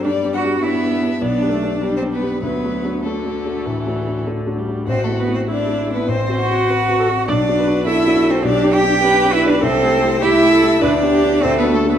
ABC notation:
X:1
M:4/4
L:1/16
Q:1/4=100
K:G
V:1 name="Violin"
d2 f2 e4 d4- d c B2 | B4 A8 z4 | c A B c d3 B c2 f6 | d4 e3 c d2 g4 e d |
c4 e4 d4 c B A B |]
V:2 name="Viola"
G,4 B,4 B,2 A,2 G,4 | F,4 D,4 E,4 D,2 G,2 | F4 E4 c4 B2 A2 | d2 B2 A4 G4 B4 |
A4 G2 A2 B2 G2 A4 |]
V:3 name="Grand piano"
(3G,,2 [B,DG]2 [B,DG]2 (3[B,DG]2 [B,DG]2 [B,DG]2 (3B,,,2 [B,DG]2 [B,DG]2 (3[B,DG]2 [B,DG]2 [B,DG]2 | (3D,,2 [A,DF]2 [A,DF]2 (3[A,DF]2 [A,DF]2 [A,DF]2 (3A,,2 [A,DF]2 [A,DF]2 (3[A,DF]2 [A,DF]2 [A,DF]2 | (3A,,,2 [A,CE]2 [A,CE]2 (3[A,CE]2 [A,CE]2 [A,CE]2 (3A,,,2 [CF]2 [CF]2 (3[CF]2 [CF]2 [CF]2 | (3B,,,2 [B,DF]2 [B,DF]2 (3[B,DF]2 [B,DF]2 [B,DF]2 (3B,,,2 [B,DG]2 [B,DG]2 (3[B,DG]2 [B,DG]2 [B,DG]2 |
(3C,,2 [A,EG]2 [A,EG]2 (3[A,EG]2 [A,EG]2 [A,EG]2 (3D,,2 [B,DG]2 [B,DG]2 (3D,,2 [A,DF]2 [A,DF]2 |]
V:4 name="Cello"
D2 F2 E4 D4- D C B,2 | B,4 A,8 z4 | C A, B, C D3 B, C2 F6 | D4 E3 C D2 G4 E D |
C4 E4 D4 C B, A, B, |]